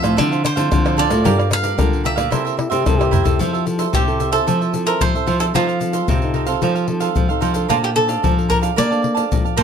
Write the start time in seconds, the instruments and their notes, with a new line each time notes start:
Already playing: nylon-string guitar A2 F3 C4 E4, cavaquinho E5
0.02 nylon-string guitar A2, cavaquinho A4 C5 F5, pandeiro, tamborim, shaker
0.17 nylon-string guitar D3 F3 C4 E4, cavaquinho D4 A4 C5 F5, pandeiro, tamborim, shaker, surdo
0.31 cavaquinho A4 C5 F5, pandeiro, shaker
0.44 cavaquinho C5, muted cavaquinho stroke, pandeiro, tamborim, shaker
0.56 nylon-string guitar D3 F3 C4 E4, cavaquinho A4 C5 F5, pandeiro, shaker
0.71 nylon-string guitar A2 D3 F3 C4 E4, pandeiro, tamborim, shaker, surdo
0.85 cavaquinho A4 C5 F5, pandeiro, tamborim, shaker
0.97 cavaquinho D4 A4 C5 D5 F5, pandeiro
1.10 nylon-string guitar A2 A#3 F4 A4, cavaquinho A4 C5 F5, pandeiro, tamborim, shaker
1.24 nylon-string guitar G2 G3, cavaquinho G4 A#4 D5 F5, pandeiro, shaker, surdo
1.38 cavaquinho A#4 D5 F5, pandeiro, tamborim, shaker
1.51 nylon-string guitar A#3 F4 A4, cavaquinho F5, muted cavaquinho stroke, pandeiro, tamborim, shaker
1.63 cavaquinho A#4 D5 F5, pandeiro, shaker
1.77 nylon-string guitar D3 A#3 F4 A4, cavaquinho G4 A#4 D5 F5, pandeiro, tamborim, shaker, surdo
1.93 pandeiro, shaker
2.04 cavaquinho G4 A#4 D5 E5 F5, pandeiro
2.16 nylon-string guitar A#2, cavaquinho A#4 D5 F5, pandeiro, tamborim, shaker
2.30 nylon-string guitar C3 A#3 E4 A4, cavaquinho E4 A#4 C5 E5, pandeiro, tamborim, shaker, surdo
2.45 cavaquinho A#4 C5 E5, pandeiro, shaker
2.57 trombone E4, muted cavaquinho stroke, pandeiro, tamborim
2.70 nylon-string guitar C3, trombone G4, cavaquinho A#4 C5 E5, pandeiro, shaker
2.86 nylon-string guitar G2 C3 A#3 E4 A4, trombone A4, pandeiro, tamborim, shaker, surdo
2.99 trombone G4, cavaquinho A#4 C5 E5, pandeiro, tamborim, shaker
3.11 cavaquinho E4 A#4 C5 E5, surdo, pandeiro, shaker
3.24 nylon-string guitar C3 C4 E4 A4, cavaquinho A#4 C5 E5, pandeiro, shaker, surdo
3.39 nylon-string guitar F3, cavaquinho F4 A4 C5 E5, pandeiro, shaker, surdo
3.53 cavaquinho A4 C5 E5, pandeiro, shaker
3.66 nylon-string guitar C4 E4 A4, muted cavaquinho stroke, pandeiro, shaker
3.79 cavaquinho A4 C5 E5, pandeiro, shaker
3.93 nylon-string guitar C3, cavaquinho F4 G4 A4 C5 E5, pandeiro, shaker, surdo
4.07 nylon-string guitar C4 E4 A4, pandeiro, shaker
4.19 cavaquinho F4 A4 C5 E5, pandeiro, shaker
4.32 nylon-string guitar C4 E4 A4, cavaquinho A4 C5 E5, pandeiro, shaker
4.47 nylon-string guitar F3, cavaquinho F4 A4 C5 E5, pandeiro, shaker, surdo
4.61 cavaquinho A4 C5 E5, pandeiro, shaker
4.74 nylon-string guitar C4 E4 A4, muted cavaquinho stroke, pandeiro, shaker
4.86 cavaquinho A4 A#4 C5 E5, pandeiro, shaker
5.01 nylon-string guitar C3 F3, cavaquinho C5, pandeiro, shaker, surdo
5.15 nylon-string guitar C4 E4 A4, cavaquinho A4 C5 E5, pandeiro, shaker
5.26 nylon-string guitar F3, cavaquinho F4 A4 C5 E5, pandeiro
5.39 nylon-string guitar C4 D#4 A4, cavaquinho A4 C5 E5, pandeiro, shaker
5.54 nylon-string guitar F3, cavaquinho D#4 F4 A4 C5 F5, pandeiro, shaker, surdo
5.68 cavaquinho A4 C5 F5, pandeiro, shaker
5.80 nylon-string guitar C4 D#4 A4, muted cavaquinho stroke, pandeiro, shaker
5.93 cavaquinho A4 C5 F5, pandeiro, shaker
6.08 nylon-string guitar C3, cavaquinho D#4 A4 C5 F5, pandeiro, shaker, surdo
6.22 nylon-string guitar C4 D#4 A4, pandeiro, shaker
6.34 cavaquinho D#4 A4 C5 F5, pandeiro
6.47 nylon-string guitar C4 D#4 A4, cavaquinho A4 C5 F5, pandeiro, shaker
6.62 nylon-string guitar F3, cavaquinho D#4 A4 C5 F5, pandeiro, shaker, surdo
6.75 cavaquinho A4 C5 F5, pandeiro, shaker
6.87 nylon-string guitar C4 D#4 A4, muted cavaquinho stroke, pandeiro
7.00 cavaquinho A4 C5 F5, pandeiro, shaker
7.16 nylon-string guitar C3 F3, pandeiro, shaker, surdo
7.29 nylon-string guitar C4 D#4 A4, cavaquinho A4 C5 F5, pandeiro, shaker
7.40 nylon-string guitar F3, cavaquinho D#4 A4 C5 F5, pandeiro, shaker
7.54 nylon-string guitar D4 A4 C5, cavaquinho A4 C5 F5, pandeiro, shaker
7.68 nylon-string guitar A#2 A#3, cavaquinho F4 A#4 D5 F5 A5, pandeiro, shaker, surdo
7.82 cavaquinho G4 D5 F5 A5, pandeiro, shaker
7.95 nylon-string guitar D4 A4 C5, cavaquinho A4, muted cavaquinho stroke, pandeiro
8.08 cavaquinho D5 F5 A5, pandeiro, shaker
8.22 nylon-string guitar F3, cavaquinho A#4 D5 F5 A5, pandeiro, shaker, surdo
8.38 nylon-string guitar D4 A4 C5, pandeiro, shaker
8.48 cavaquinho A#4 D5 F5 A5, pandeiro, shaker, surdo
8.61 cavaquinho D5 F5 A5, pandeiro, shaker
8.76 nylon-string guitar A#3, cavaquinho A#4 D5 F5 A5, pandeiro, shaker, surdo
8.91 nylon-string guitar D4 A4 C5, cavaquinho D5 F5 A5, pandeiro, shaker
9.02 muted cavaquinho stroke, pandeiro
9.15 nylon-string guitar D4 A4 C5, cavaquinho D5 F5 A5, pandeiro, shaker
9.32 nylon-string guitar A#2 F3, pandeiro, shaker, surdo
9.44 cavaquinho D5 F5 A5, pandeiro, shaker
9.56 nylon-string guitar A#2 D4 A4 C5, cavaquinho A#4 C5 D5 F5 A5, pandeiro, shaker